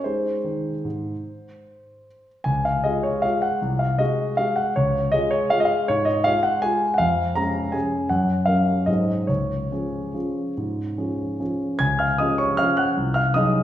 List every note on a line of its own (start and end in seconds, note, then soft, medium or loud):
0.04 0.33 G#3 soft
0.04 0.37 D#4 soft
0.04 0.37 G#4 soft
0.04 2.26 C5 medium
0.44 0.73 D#3 soft
0.85 1.13 G#2 soft
2.44 2.83 C#2 soft
2.44 2.64 G#5 medium
2.65 2.85 F5 medium
2.84 3.20 G#3 soft
2.84 3.21 F4 soft
2.84 3.21 G#4 soft
2.84 3.04 D#5 medium
3.03 3.23 C#5 medium
3.22 3.58 G#3 soft
3.22 3.59 F4 soft
3.22 3.59 G#4 soft
3.22 3.42 F5 medium
3.42 3.80 F#5 medium
3.62 3.99 C2 soft
3.79 3.99 F5 medium
3.99 4.35 G#3 soft
3.99 4.35 F#4 soft
3.99 4.35 G#4 soft
3.99 4.38 D#5 medium
4.37 4.73 G#3 soft
4.37 4.73 F#4 soft
4.37 4.73 G#4 soft
4.37 4.57 F5 medium
4.56 4.75 F#5 medium
4.76 5.13 C#2 medium
4.76 5.13 C#5 medium
5.12 5.48 G#3 soft
5.12 5.48 F4 soft
5.12 5.48 G#4 soft
5.12 5.32 D#5 medium
5.31 5.51 C#5 medium
5.50 5.85 G#3 soft
5.50 5.85 F4 soft
5.50 5.85 G#4 soft
5.50 5.58 F5 medium
5.60 5.66 D#5 medium
5.65 5.89 F5 medium
5.88 6.25 G#2 medium
5.88 6.07 C#5 medium
6.05 6.25 D#5 medium
6.24 6.60 G#3 soft
6.24 6.60 F4 soft
6.24 6.60 G#4 soft
6.24 6.44 F5 medium
6.43 6.63 F#5 medium
6.62 6.96 G#3 soft
6.62 6.96 F4 soft
6.62 6.96 G#4 soft
6.62 6.93 G#5 medium
6.94 7.35 F5 medium
6.94 7.00 F#5 medium
6.99 7.35 F2 medium
7.35 7.70 G#3 soft
7.35 7.71 C#4 soft
7.35 7.71 G#4 soft
7.35 7.74 A#5 medium
7.72 8.07 G#3 soft
7.72 8.07 C#4 soft
7.72 8.08 G#4 soft
7.72 8.11 G#5 medium
8.09 8.47 F#2 medium
8.09 8.47 F#5 medium
8.46 8.84 F#3 soft
8.46 8.84 C#4 soft
8.46 8.84 A#4 soft
8.46 8.87 F5 medium
8.86 9.28 G#2 soft
8.86 9.25 F#3 soft
8.86 9.25 C4 soft
8.86 9.25 G#4 soft
8.86 9.28 D#5 medium
9.27 9.70 C#2 soft
9.27 11.39 C#5 medium
9.72 10.11 F3 soft
9.72 10.11 C#4 soft
9.72 10.12 G#4 soft
10.14 10.53 F3 soft
10.14 10.53 C#4 soft
10.14 10.53 G#4 soft
10.57 10.97 G#2 soft
10.98 11.36 F3 soft
10.98 11.36 C#4 soft
10.98 11.36 G#4 soft
11.40 11.77 F3 soft
11.40 11.77 C#4 soft
11.40 11.77 G#4 soft
11.79 12.18 C#2 soft
11.79 11.98 G#5 medium
11.79 11.99 G#6 medium
11.99 12.18 F5 medium
11.99 12.19 F6 medium
12.18 12.55 F3 soft
12.18 12.55 C#4 soft
12.18 12.56 G#4 soft
12.18 12.38 D#5 medium
12.18 12.39 D#6 medium
12.38 12.57 C#5 medium
12.38 12.58 C#6 medium
12.57 12.93 F3 soft
12.57 12.93 C#4 soft
12.57 12.93 G#4 soft
12.57 12.77 F5 medium
12.57 12.77 F6 medium
12.77 13.13 F#5 medium
12.77 13.15 F#6 medium
12.97 13.34 C2 medium
13.14 13.33 F5 medium
13.14 13.34 F6 medium
13.34 13.63 F#3 soft
13.34 13.63 D#4 soft
13.34 13.63 G#4 soft
13.34 13.63 D#5 medium
13.34 13.63 D#6 medium